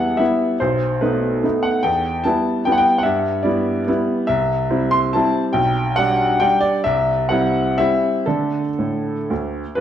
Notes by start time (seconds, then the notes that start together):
Already playing: E2 G3 B3 E4 E5 F#5
0.17 G3 B3 E4 E5
0.60 B1 C5
1.01 A3 B3 D#4 B4
1.43 A3 B3 D#4
1.63 F#5
1.83 E2 G5
2.24 G3 B3 E4 A5
2.65 G3 B3 E4 G5
2.72 F#5
2.78 G5
2.98 F#5
3.03 G2 E5
3.43 G3 B3 E4 D5
3.88 G3 B3 E4
4.27 C2 E5
4.70 G3 C4 E4
4.91 C6
5.13 G3 C4 E4 A5
5.53 B1 G5
5.96 G3 D4 F#5
6.40 G3 D4 G5
6.61 D5
6.84 C2 E5
7.29 G3 C4 E4 F#5
7.78 G3 C4 E4 E5
8.26 D3 A3 D4 A4
8.79 A2
9.30 D2
9.75 G2 B4